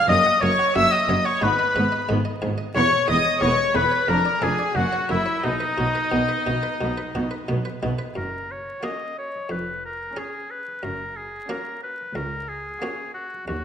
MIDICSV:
0, 0, Header, 1, 8, 480
1, 0, Start_track
1, 0, Key_signature, 5, "major"
1, 0, Tempo, 666667
1, 69, Time_signature, 4, 2, 24, 8
1, 2950, Tempo, 678733
1, 5829, Key_signature, 6, "major"
1, 5830, Tempo, 664452
1, 9786, End_track
2, 0, Start_track
2, 0, Title_t, "Violin section"
2, 0, Program_c, 0, 48
2, 73, Note_on_c, 0, 87, 127
2, 306, Note_off_c, 0, 87, 0
2, 313, Note_on_c, 0, 85, 118
2, 546, Note_off_c, 0, 85, 0
2, 551, Note_on_c, 0, 88, 127
2, 668, Note_off_c, 0, 88, 0
2, 670, Note_on_c, 0, 87, 109
2, 908, Note_on_c, 0, 85, 118
2, 909, Note_off_c, 0, 87, 0
2, 1023, Note_on_c, 0, 83, 113
2, 1028, Note_off_c, 0, 85, 0
2, 1497, Note_off_c, 0, 83, 0
2, 1977, Note_on_c, 0, 85, 121
2, 2205, Note_off_c, 0, 85, 0
2, 2216, Note_on_c, 0, 87, 126
2, 2452, Note_on_c, 0, 85, 117
2, 2457, Note_off_c, 0, 87, 0
2, 2695, Note_off_c, 0, 85, 0
2, 2702, Note_on_c, 0, 83, 107
2, 2941, Note_off_c, 0, 83, 0
2, 2943, Note_on_c, 0, 82, 109
2, 3183, Note_off_c, 0, 82, 0
2, 3183, Note_on_c, 0, 80, 105
2, 3423, Note_off_c, 0, 80, 0
2, 3424, Note_on_c, 0, 78, 106
2, 3654, Note_on_c, 0, 76, 103
2, 3659, Note_off_c, 0, 78, 0
2, 3895, Note_off_c, 0, 76, 0
2, 3900, Note_on_c, 0, 75, 106
2, 5348, Note_off_c, 0, 75, 0
2, 6308, Note_on_c, 0, 85, 41
2, 6667, Note_off_c, 0, 85, 0
2, 7267, Note_on_c, 0, 85, 42
2, 7627, Note_off_c, 0, 85, 0
2, 8234, Note_on_c, 0, 82, 44
2, 8589, Note_off_c, 0, 82, 0
2, 9189, Note_on_c, 0, 82, 42
2, 9545, Note_off_c, 0, 82, 0
2, 9786, End_track
3, 0, Start_track
3, 0, Title_t, "Oboe"
3, 0, Program_c, 1, 68
3, 65, Note_on_c, 1, 75, 117
3, 300, Note_on_c, 1, 73, 99
3, 311, Note_off_c, 1, 75, 0
3, 539, Note_off_c, 1, 73, 0
3, 544, Note_on_c, 1, 76, 112
3, 657, Note_on_c, 1, 75, 92
3, 668, Note_off_c, 1, 76, 0
3, 904, Note_on_c, 1, 73, 92
3, 915, Note_off_c, 1, 75, 0
3, 1027, Note_on_c, 1, 71, 106
3, 1037, Note_off_c, 1, 73, 0
3, 1508, Note_off_c, 1, 71, 0
3, 1983, Note_on_c, 1, 73, 116
3, 2209, Note_off_c, 1, 73, 0
3, 2228, Note_on_c, 1, 75, 94
3, 2464, Note_on_c, 1, 73, 100
3, 2474, Note_off_c, 1, 75, 0
3, 2703, Note_on_c, 1, 71, 96
3, 2714, Note_off_c, 1, 73, 0
3, 2944, Note_on_c, 1, 70, 97
3, 2954, Note_off_c, 1, 71, 0
3, 3185, Note_on_c, 1, 68, 86
3, 3196, Note_off_c, 1, 70, 0
3, 3417, Note_on_c, 1, 66, 83
3, 3427, Note_off_c, 1, 68, 0
3, 3660, Note_off_c, 1, 66, 0
3, 3664, Note_on_c, 1, 64, 86
3, 3906, Note_on_c, 1, 63, 94
3, 3917, Note_off_c, 1, 64, 0
3, 5351, Note_off_c, 1, 63, 0
3, 5830, Note_on_c, 1, 70, 53
3, 6080, Note_on_c, 1, 73, 45
3, 6091, Note_off_c, 1, 70, 0
3, 6307, Note_off_c, 1, 73, 0
3, 6311, Note_on_c, 1, 75, 57
3, 6547, Note_off_c, 1, 75, 0
3, 6561, Note_on_c, 1, 73, 53
3, 6799, Note_on_c, 1, 71, 50
3, 6809, Note_off_c, 1, 73, 0
3, 7035, Note_off_c, 1, 71, 0
3, 7046, Note_on_c, 1, 70, 47
3, 7283, Note_on_c, 1, 68, 49
3, 7294, Note_off_c, 1, 70, 0
3, 7518, Note_on_c, 1, 71, 56
3, 7529, Note_off_c, 1, 68, 0
3, 7755, Note_on_c, 1, 70, 49
3, 7766, Note_off_c, 1, 71, 0
3, 7991, Note_on_c, 1, 68, 50
3, 8002, Note_off_c, 1, 70, 0
3, 8231, Note_off_c, 1, 68, 0
3, 8239, Note_on_c, 1, 70, 49
3, 8470, Note_off_c, 1, 70, 0
3, 8476, Note_on_c, 1, 71, 53
3, 8714, Note_on_c, 1, 70, 55
3, 8725, Note_off_c, 1, 71, 0
3, 8947, Note_on_c, 1, 68, 53
3, 8958, Note_off_c, 1, 70, 0
3, 9417, Note_off_c, 1, 68, 0
3, 9421, Note_on_c, 1, 66, 54
3, 9660, Note_off_c, 1, 66, 0
3, 9664, Note_on_c, 1, 66, 58
3, 9786, Note_off_c, 1, 66, 0
3, 9786, End_track
4, 0, Start_track
4, 0, Title_t, "Violin section"
4, 0, Program_c, 2, 48
4, 79, Note_on_c, 2, 75, 100
4, 307, Note_on_c, 2, 73, 110
4, 309, Note_off_c, 2, 75, 0
4, 543, Note_on_c, 2, 76, 112
4, 547, Note_off_c, 2, 73, 0
4, 666, Note_off_c, 2, 76, 0
4, 677, Note_on_c, 2, 75, 81
4, 908, Note_off_c, 2, 75, 0
4, 916, Note_on_c, 2, 73, 99
4, 1031, Note_on_c, 2, 71, 94
4, 1033, Note_off_c, 2, 73, 0
4, 1510, Note_off_c, 2, 71, 0
4, 1985, Note_on_c, 2, 73, 108
4, 2210, Note_off_c, 2, 73, 0
4, 2219, Note_on_c, 2, 75, 104
4, 2452, Note_on_c, 2, 73, 102
4, 2458, Note_off_c, 2, 75, 0
4, 2695, Note_off_c, 2, 73, 0
4, 2696, Note_on_c, 2, 71, 101
4, 2940, Note_on_c, 2, 70, 92
4, 2943, Note_off_c, 2, 71, 0
4, 3174, Note_on_c, 2, 68, 84
4, 3182, Note_off_c, 2, 70, 0
4, 3413, Note_on_c, 2, 66, 88
4, 3418, Note_off_c, 2, 68, 0
4, 3652, Note_on_c, 2, 64, 77
4, 3658, Note_off_c, 2, 66, 0
4, 3897, Note_on_c, 2, 63, 85
4, 3898, Note_off_c, 2, 64, 0
4, 5318, Note_off_c, 2, 63, 0
4, 6309, Note_on_c, 2, 66, 41
4, 6668, Note_off_c, 2, 66, 0
4, 7263, Note_on_c, 2, 68, 44
4, 7624, Note_off_c, 2, 68, 0
4, 8223, Note_on_c, 2, 66, 43
4, 8583, Note_off_c, 2, 66, 0
4, 9188, Note_on_c, 2, 66, 47
4, 9544, Note_off_c, 2, 66, 0
4, 9786, End_track
5, 0, Start_track
5, 0, Title_t, "Harpsichord"
5, 0, Program_c, 3, 6
5, 73, Note_on_c, 3, 42, 76
5, 188, Note_on_c, 3, 78, 73
5, 287, Note_off_c, 3, 42, 0
5, 307, Note_on_c, 3, 42, 83
5, 308, Note_on_c, 3, 70, 68
5, 314, Note_off_c, 3, 78, 0
5, 425, Note_on_c, 3, 78, 65
5, 434, Note_off_c, 3, 70, 0
5, 523, Note_off_c, 3, 42, 0
5, 544, Note_on_c, 3, 66, 65
5, 545, Note_on_c, 3, 42, 81
5, 553, Note_off_c, 3, 78, 0
5, 662, Note_on_c, 3, 78, 67
5, 672, Note_off_c, 3, 66, 0
5, 763, Note_off_c, 3, 42, 0
5, 785, Note_on_c, 3, 42, 73
5, 788, Note_on_c, 3, 73, 65
5, 791, Note_off_c, 3, 78, 0
5, 903, Note_on_c, 3, 78, 65
5, 914, Note_off_c, 3, 73, 0
5, 1003, Note_off_c, 3, 42, 0
5, 1019, Note_on_c, 3, 44, 82
5, 1022, Note_on_c, 3, 56, 84
5, 1026, Note_off_c, 3, 78, 0
5, 1142, Note_off_c, 3, 56, 0
5, 1146, Note_on_c, 3, 75, 72
5, 1240, Note_off_c, 3, 44, 0
5, 1265, Note_on_c, 3, 71, 72
5, 1266, Note_on_c, 3, 44, 74
5, 1273, Note_off_c, 3, 75, 0
5, 1383, Note_on_c, 3, 75, 69
5, 1393, Note_off_c, 3, 71, 0
5, 1483, Note_off_c, 3, 44, 0
5, 1502, Note_on_c, 3, 63, 64
5, 1504, Note_on_c, 3, 44, 73
5, 1512, Note_off_c, 3, 75, 0
5, 1620, Note_on_c, 3, 75, 68
5, 1632, Note_off_c, 3, 63, 0
5, 1722, Note_off_c, 3, 44, 0
5, 1741, Note_on_c, 3, 44, 77
5, 1743, Note_on_c, 3, 68, 65
5, 1751, Note_off_c, 3, 75, 0
5, 1856, Note_on_c, 3, 75, 68
5, 1872, Note_off_c, 3, 68, 0
5, 1961, Note_off_c, 3, 44, 0
5, 1978, Note_on_c, 3, 40, 75
5, 1983, Note_off_c, 3, 75, 0
5, 2098, Note_on_c, 3, 73, 71
5, 2199, Note_off_c, 3, 40, 0
5, 2217, Note_on_c, 3, 40, 75
5, 2218, Note_on_c, 3, 71, 63
5, 2229, Note_off_c, 3, 73, 0
5, 2338, Note_on_c, 3, 73, 59
5, 2349, Note_off_c, 3, 71, 0
5, 2438, Note_off_c, 3, 40, 0
5, 2454, Note_on_c, 3, 61, 62
5, 2456, Note_on_c, 3, 40, 70
5, 2469, Note_off_c, 3, 73, 0
5, 2578, Note_on_c, 3, 73, 62
5, 2587, Note_off_c, 3, 61, 0
5, 2677, Note_off_c, 3, 40, 0
5, 2697, Note_on_c, 3, 40, 68
5, 2700, Note_on_c, 3, 68, 56
5, 2709, Note_off_c, 3, 73, 0
5, 2818, Note_on_c, 3, 73, 54
5, 2830, Note_off_c, 3, 68, 0
5, 2919, Note_off_c, 3, 40, 0
5, 2939, Note_on_c, 3, 41, 75
5, 2944, Note_off_c, 3, 73, 0
5, 3061, Note_on_c, 3, 74, 66
5, 3157, Note_off_c, 3, 41, 0
5, 3178, Note_on_c, 3, 71, 61
5, 3179, Note_on_c, 3, 41, 70
5, 3189, Note_off_c, 3, 74, 0
5, 3298, Note_on_c, 3, 74, 57
5, 3307, Note_off_c, 3, 71, 0
5, 3396, Note_off_c, 3, 41, 0
5, 3412, Note_on_c, 3, 42, 63
5, 3421, Note_off_c, 3, 74, 0
5, 3536, Note_on_c, 3, 73, 56
5, 3633, Note_off_c, 3, 42, 0
5, 3653, Note_on_c, 3, 70, 57
5, 3654, Note_on_c, 3, 42, 66
5, 3666, Note_off_c, 3, 73, 0
5, 3771, Note_on_c, 3, 73, 57
5, 3785, Note_off_c, 3, 70, 0
5, 3875, Note_off_c, 3, 42, 0
5, 3897, Note_on_c, 3, 47, 58
5, 3898, Note_off_c, 3, 73, 0
5, 4015, Note_on_c, 3, 71, 61
5, 4118, Note_off_c, 3, 47, 0
5, 4137, Note_on_c, 3, 47, 62
5, 4138, Note_on_c, 3, 66, 54
5, 4147, Note_off_c, 3, 71, 0
5, 4262, Note_on_c, 3, 71, 55
5, 4269, Note_off_c, 3, 66, 0
5, 4359, Note_off_c, 3, 47, 0
5, 4377, Note_on_c, 3, 59, 56
5, 4378, Note_on_c, 3, 47, 59
5, 4392, Note_off_c, 3, 71, 0
5, 4499, Note_on_c, 3, 71, 58
5, 4510, Note_off_c, 3, 59, 0
5, 4600, Note_off_c, 3, 47, 0
5, 4625, Note_on_c, 3, 47, 61
5, 4627, Note_on_c, 3, 63, 52
5, 4631, Note_off_c, 3, 71, 0
5, 4742, Note_on_c, 3, 71, 48
5, 4755, Note_off_c, 3, 63, 0
5, 4844, Note_off_c, 3, 47, 0
5, 4866, Note_on_c, 3, 47, 67
5, 4873, Note_off_c, 3, 71, 0
5, 4985, Note_on_c, 3, 71, 62
5, 5085, Note_off_c, 3, 47, 0
5, 5110, Note_on_c, 3, 47, 61
5, 5110, Note_on_c, 3, 66, 56
5, 5114, Note_off_c, 3, 71, 0
5, 5221, Note_on_c, 3, 71, 52
5, 5237, Note_off_c, 3, 66, 0
5, 5326, Note_off_c, 3, 47, 0
5, 5345, Note_on_c, 3, 47, 64
5, 5347, Note_on_c, 3, 59, 51
5, 5352, Note_off_c, 3, 71, 0
5, 5464, Note_on_c, 3, 71, 59
5, 5474, Note_off_c, 3, 59, 0
5, 5563, Note_off_c, 3, 47, 0
5, 5588, Note_on_c, 3, 47, 63
5, 5588, Note_on_c, 3, 63, 52
5, 5593, Note_off_c, 3, 71, 0
5, 5700, Note_on_c, 3, 71, 56
5, 5715, Note_off_c, 3, 63, 0
5, 5804, Note_off_c, 3, 47, 0
5, 5820, Note_on_c, 3, 42, 31
5, 5824, Note_off_c, 3, 71, 0
5, 6205, Note_off_c, 3, 42, 0
5, 6306, Note_on_c, 3, 58, 28
5, 6310, Note_on_c, 3, 61, 28
5, 6310, Note_on_c, 3, 66, 32
5, 6654, Note_off_c, 3, 58, 0
5, 6656, Note_off_c, 3, 61, 0
5, 6656, Note_off_c, 3, 66, 0
5, 6786, Note_on_c, 3, 41, 36
5, 7168, Note_off_c, 3, 41, 0
5, 7272, Note_on_c, 3, 61, 28
5, 7273, Note_on_c, 3, 68, 32
5, 7618, Note_off_c, 3, 61, 0
5, 7618, Note_off_c, 3, 68, 0
5, 7752, Note_on_c, 3, 42, 31
5, 8130, Note_off_c, 3, 42, 0
5, 8231, Note_on_c, 3, 58, 29
5, 8231, Note_on_c, 3, 61, 29
5, 8234, Note_on_c, 3, 66, 30
5, 8576, Note_off_c, 3, 58, 0
5, 8576, Note_off_c, 3, 61, 0
5, 8578, Note_off_c, 3, 66, 0
5, 8709, Note_on_c, 3, 37, 40
5, 9087, Note_off_c, 3, 37, 0
5, 9188, Note_on_c, 3, 58, 29
5, 9193, Note_on_c, 3, 61, 28
5, 9196, Note_on_c, 3, 66, 34
5, 9533, Note_off_c, 3, 58, 0
5, 9536, Note_off_c, 3, 61, 0
5, 9538, Note_off_c, 3, 66, 0
5, 9665, Note_on_c, 3, 39, 35
5, 9786, Note_off_c, 3, 39, 0
5, 9786, End_track
6, 0, Start_track
6, 0, Title_t, "Viola section"
6, 0, Program_c, 4, 48
6, 75, Note_on_c, 4, 58, 84
6, 133, Note_off_c, 4, 58, 0
6, 315, Note_on_c, 4, 58, 72
6, 372, Note_off_c, 4, 58, 0
6, 552, Note_on_c, 4, 58, 78
6, 610, Note_off_c, 4, 58, 0
6, 791, Note_on_c, 4, 58, 72
6, 849, Note_off_c, 4, 58, 0
6, 1031, Note_on_c, 4, 59, 84
6, 1089, Note_off_c, 4, 59, 0
6, 1279, Note_on_c, 4, 59, 74
6, 1337, Note_off_c, 4, 59, 0
6, 1515, Note_on_c, 4, 59, 81
6, 1573, Note_off_c, 4, 59, 0
6, 1756, Note_on_c, 4, 59, 75
6, 1814, Note_off_c, 4, 59, 0
6, 1990, Note_on_c, 4, 59, 83
6, 2048, Note_off_c, 4, 59, 0
6, 2240, Note_on_c, 4, 59, 71
6, 2298, Note_off_c, 4, 59, 0
6, 2470, Note_on_c, 4, 59, 80
6, 2528, Note_off_c, 4, 59, 0
6, 2711, Note_on_c, 4, 59, 66
6, 2768, Note_off_c, 4, 59, 0
6, 2951, Note_on_c, 4, 62, 73
6, 3008, Note_off_c, 4, 62, 0
6, 3187, Note_on_c, 4, 62, 73
6, 3244, Note_off_c, 4, 62, 0
6, 3428, Note_on_c, 4, 58, 70
6, 3485, Note_off_c, 4, 58, 0
6, 3667, Note_on_c, 4, 58, 66
6, 3724, Note_off_c, 4, 58, 0
6, 3902, Note_on_c, 4, 59, 76
6, 3958, Note_off_c, 4, 59, 0
6, 4151, Note_on_c, 4, 59, 63
6, 4208, Note_off_c, 4, 59, 0
6, 4384, Note_on_c, 4, 59, 67
6, 4440, Note_off_c, 4, 59, 0
6, 4633, Note_on_c, 4, 59, 59
6, 4689, Note_off_c, 4, 59, 0
6, 4871, Note_on_c, 4, 59, 72
6, 4928, Note_off_c, 4, 59, 0
6, 5110, Note_on_c, 4, 59, 57
6, 5167, Note_off_c, 4, 59, 0
6, 5353, Note_on_c, 4, 59, 66
6, 5409, Note_off_c, 4, 59, 0
6, 5591, Note_on_c, 4, 59, 66
6, 5648, Note_off_c, 4, 59, 0
6, 6312, Note_on_c, 4, 61, 41
6, 6670, Note_off_c, 4, 61, 0
6, 7270, Note_on_c, 4, 61, 44
6, 7628, Note_off_c, 4, 61, 0
6, 8224, Note_on_c, 4, 61, 43
6, 8584, Note_off_c, 4, 61, 0
6, 9185, Note_on_c, 4, 61, 45
6, 9543, Note_off_c, 4, 61, 0
6, 9786, End_track
7, 0, Start_track
7, 0, Title_t, "Cello section"
7, 0, Program_c, 5, 48
7, 63, Note_on_c, 5, 42, 92
7, 121, Note_off_c, 5, 42, 0
7, 306, Note_on_c, 5, 42, 82
7, 363, Note_off_c, 5, 42, 0
7, 542, Note_on_c, 5, 42, 92
7, 600, Note_off_c, 5, 42, 0
7, 781, Note_on_c, 5, 42, 92
7, 839, Note_off_c, 5, 42, 0
7, 1023, Note_on_c, 5, 44, 92
7, 1081, Note_off_c, 5, 44, 0
7, 1269, Note_on_c, 5, 44, 89
7, 1327, Note_off_c, 5, 44, 0
7, 1513, Note_on_c, 5, 44, 91
7, 1571, Note_off_c, 5, 44, 0
7, 1749, Note_on_c, 5, 44, 83
7, 1806, Note_off_c, 5, 44, 0
7, 1992, Note_on_c, 5, 40, 95
7, 2050, Note_off_c, 5, 40, 0
7, 2226, Note_on_c, 5, 40, 85
7, 2283, Note_off_c, 5, 40, 0
7, 2465, Note_on_c, 5, 40, 82
7, 2523, Note_off_c, 5, 40, 0
7, 2700, Note_on_c, 5, 40, 84
7, 2757, Note_off_c, 5, 40, 0
7, 2942, Note_on_c, 5, 41, 87
7, 2998, Note_off_c, 5, 41, 0
7, 3181, Note_on_c, 5, 41, 77
7, 3237, Note_off_c, 5, 41, 0
7, 3421, Note_on_c, 5, 42, 78
7, 3477, Note_off_c, 5, 42, 0
7, 3660, Note_on_c, 5, 42, 71
7, 3717, Note_off_c, 5, 42, 0
7, 3903, Note_on_c, 5, 47, 76
7, 3959, Note_off_c, 5, 47, 0
7, 4149, Note_on_c, 5, 47, 69
7, 4205, Note_off_c, 5, 47, 0
7, 4394, Note_on_c, 5, 47, 79
7, 4450, Note_off_c, 5, 47, 0
7, 4635, Note_on_c, 5, 47, 70
7, 4692, Note_off_c, 5, 47, 0
7, 4875, Note_on_c, 5, 47, 77
7, 4932, Note_off_c, 5, 47, 0
7, 5117, Note_on_c, 5, 47, 73
7, 5173, Note_off_c, 5, 47, 0
7, 5355, Note_on_c, 5, 47, 75
7, 5412, Note_off_c, 5, 47, 0
7, 5596, Note_on_c, 5, 47, 68
7, 5653, Note_off_c, 5, 47, 0
7, 5834, Note_on_c, 5, 42, 47
7, 6213, Note_off_c, 5, 42, 0
7, 6794, Note_on_c, 5, 41, 50
7, 7173, Note_off_c, 5, 41, 0
7, 7757, Note_on_c, 5, 42, 49
7, 8134, Note_off_c, 5, 42, 0
7, 8713, Note_on_c, 5, 37, 49
7, 9090, Note_off_c, 5, 37, 0
7, 9669, Note_on_c, 5, 39, 49
7, 9786, Note_off_c, 5, 39, 0
7, 9786, End_track
8, 0, Start_track
8, 0, Title_t, "Double bass section"
8, 0, Program_c, 6, 48
8, 62, Note_on_c, 6, 30, 93
8, 119, Note_off_c, 6, 30, 0
8, 303, Note_on_c, 6, 30, 86
8, 361, Note_off_c, 6, 30, 0
8, 545, Note_on_c, 6, 30, 93
8, 602, Note_off_c, 6, 30, 0
8, 782, Note_on_c, 6, 30, 81
8, 840, Note_off_c, 6, 30, 0
8, 1026, Note_on_c, 6, 32, 88
8, 1083, Note_off_c, 6, 32, 0
8, 1262, Note_on_c, 6, 32, 82
8, 1320, Note_off_c, 6, 32, 0
8, 1508, Note_on_c, 6, 32, 96
8, 1566, Note_off_c, 6, 32, 0
8, 1749, Note_on_c, 6, 32, 90
8, 1806, Note_off_c, 6, 32, 0
8, 1989, Note_on_c, 6, 28, 91
8, 2047, Note_off_c, 6, 28, 0
8, 2228, Note_on_c, 6, 28, 81
8, 2285, Note_off_c, 6, 28, 0
8, 2466, Note_on_c, 6, 28, 88
8, 2523, Note_off_c, 6, 28, 0
8, 2707, Note_on_c, 6, 28, 73
8, 2765, Note_off_c, 6, 28, 0
8, 2949, Note_on_c, 6, 29, 79
8, 3005, Note_off_c, 6, 29, 0
8, 3183, Note_on_c, 6, 29, 76
8, 3239, Note_off_c, 6, 29, 0
8, 3421, Note_on_c, 6, 30, 80
8, 3477, Note_off_c, 6, 30, 0
8, 3660, Note_on_c, 6, 30, 84
8, 3717, Note_off_c, 6, 30, 0
8, 3904, Note_on_c, 6, 35, 81
8, 3961, Note_off_c, 6, 35, 0
8, 4145, Note_on_c, 6, 35, 76
8, 4201, Note_off_c, 6, 35, 0
8, 4385, Note_on_c, 6, 35, 79
8, 4441, Note_off_c, 6, 35, 0
8, 4629, Note_on_c, 6, 35, 70
8, 4685, Note_off_c, 6, 35, 0
8, 4873, Note_on_c, 6, 35, 70
8, 4929, Note_off_c, 6, 35, 0
8, 5109, Note_on_c, 6, 35, 72
8, 5165, Note_off_c, 6, 35, 0
8, 5349, Note_on_c, 6, 35, 76
8, 5405, Note_off_c, 6, 35, 0
8, 5589, Note_on_c, 6, 35, 75
8, 5646, Note_off_c, 6, 35, 0
8, 5829, Note_on_c, 6, 30, 48
8, 6210, Note_off_c, 6, 30, 0
8, 6789, Note_on_c, 6, 29, 41
8, 7170, Note_off_c, 6, 29, 0
8, 7750, Note_on_c, 6, 30, 46
8, 8130, Note_off_c, 6, 30, 0
8, 8708, Note_on_c, 6, 37, 47
8, 9088, Note_off_c, 6, 37, 0
8, 9665, Note_on_c, 6, 39, 53
8, 9786, Note_off_c, 6, 39, 0
8, 9786, End_track
0, 0, End_of_file